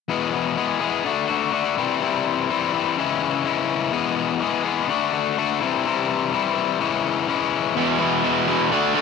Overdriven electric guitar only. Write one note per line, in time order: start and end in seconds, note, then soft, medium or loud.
0.08 0.57 E2 medium
0.08 0.57 B2 medium
0.08 0.34 E3 medium
0.08 0.33 G#3 medium
0.08 0.32 B3 medium
0.08 0.32 G#4 medium
0.33 0.54 E3 soft
0.33 0.55 G#3 soft
0.33 0.56 B3 soft
0.33 0.56 G#4 medium
0.56 0.81 E3 medium
0.56 0.81 G#3 medium
0.56 0.80 B3 medium
0.56 0.79 G#4 medium
0.80 1.04 E3 soft
0.80 1.04 G#3 soft
0.80 1.04 B3 medium
0.80 1.04 G#4 medium
1.04 1.50 D3 medium
1.04 1.30 A3 medium
1.04 1.28 D4 medium
1.04 1.27 F#4 medium
1.28 1.52 A3 soft
1.28 1.52 D4 soft
1.28 1.53 F#4 medium
1.52 1.75 D3 medium
1.52 1.76 A3 medium
1.52 1.76 D4 medium
1.52 1.76 F#4 medium
1.77 1.99 C3 medium
1.77 2.00 E3 medium
1.77 2.01 G3 medium
1.77 2.01 C4 medium
1.77 2.02 E4 medium
2.01 2.49 C3 medium
2.01 2.49 E3 medium
2.01 2.26 G3 medium
2.01 2.26 C4 medium
2.01 2.24 E4 medium
2.25 2.49 G3 soft
2.25 2.49 C4 soft
2.25 2.51 E4 medium
2.50 2.96 E3 medium
2.50 2.74 G3 medium
2.50 2.73 C4 medium
2.50 2.72 E4 medium
2.73 2.97 G3 soft
2.73 2.96 C4 medium
2.73 2.96 E4 medium
2.98 3.43 C#3 medium
2.98 3.44 E3 medium
2.98 3.23 G#3 medium
2.98 3.22 C#4 medium
2.98 3.20 E4 medium
3.22 3.44 G#3 medium
3.22 3.45 C#4 medium
3.22 3.46 E4 medium
3.44 3.91 C#3 medium
3.44 3.92 E3 medium
3.44 3.92 G#3 medium
3.44 3.92 C#4 medium
3.44 3.92 E4 medium
3.92 4.40 E2 medium
3.92 4.40 B2 medium
3.92 4.16 E3 medium
3.92 4.16 G#3 medium
3.92 4.15 B3 medium
3.92 4.14 G#4 medium
4.15 4.39 E3 soft
4.15 4.40 G#3 soft
4.15 4.41 B3 soft
4.15 4.42 G#4 medium
4.40 4.64 E3 medium
4.40 4.64 G#3 medium
4.40 4.63 B3 medium
4.40 4.62 G#4 medium
4.63 4.88 E3 soft
4.63 4.87 G#3 soft
4.63 4.87 B3 medium
4.63 4.86 G#4 medium
4.88 5.36 D3 medium
4.88 5.13 A3 medium
4.88 5.12 D4 medium
4.88 5.11 F#4 medium
5.12 5.37 A3 soft
5.12 5.37 D4 medium
5.12 5.38 F#4 medium
5.37 5.59 D3 medium
5.37 5.60 A3 medium
5.37 5.60 D4 medium
5.37 5.60 F#4 medium
5.61 5.84 C3 medium
5.61 5.85 E3 medium
5.61 5.85 G3 medium
5.61 5.86 C4 medium
5.61 5.86 E4 medium
5.85 6.32 C3 medium
5.85 6.31 E3 medium
5.85 6.09 G3 medium
5.85 6.08 C4 medium
5.85 6.07 E4 medium
6.08 6.31 G3 soft
6.08 6.33 C4 soft
6.08 6.33 E4 medium
6.32 6.78 E3 medium
6.32 6.56 G3 medium
6.32 6.55 C4 medium
6.32 6.54 E4 medium
6.55 6.79 G3 medium
6.55 6.78 C4 medium
6.55 6.78 E4 medium
6.80 7.26 C#3 medium
6.80 7.27 E3 medium
6.80 7.05 G#3 medium
6.80 7.04 C#4 medium
6.80 7.02 E4 medium
7.03 7.28 G#3 soft
7.03 7.28 C#4 medium
7.03 7.28 E4 medium
7.27 7.74 C#3 medium
7.27 7.74 E3 medium
7.27 7.75 G#3 medium
7.27 7.75 C#4 medium
7.27 7.75 E4 medium
7.75 7.98 E2 medium
7.75 7.98 B2 medium
7.75 7.98 E3 medium
7.75 7.99 G#3 medium
7.75 7.99 B3 medium
7.75 8.00 E4 medium
7.99 8.22 E2 medium
7.99 8.23 B2 medium
7.99 8.23 E3 medium
7.99 8.23 G#3 medium
7.99 8.24 B3 medium
7.99 8.24 E4 medium
8.23 8.46 E2 medium
8.23 8.47 B2 medium
8.23 8.47 E3 medium
8.23 8.47 G#3 medium
8.23 8.48 B3 medium
8.23 8.48 E4 medium
8.47 8.69 E2 medium
8.47 8.70 B2 medium
8.47 8.70 E3 medium
8.47 8.70 G#3 loud
8.47 8.70 B3 loud
8.47 8.70 E4 loud
8.71 8.93 D3 medium
8.71 8.94 A3 medium
8.71 8.94 D4 medium
8.71 8.95 F#4 medium
8.94 9.02 D3 medium
8.94 9.02 A3 medium
8.94 9.02 D4 medium
8.94 9.02 F#4 medium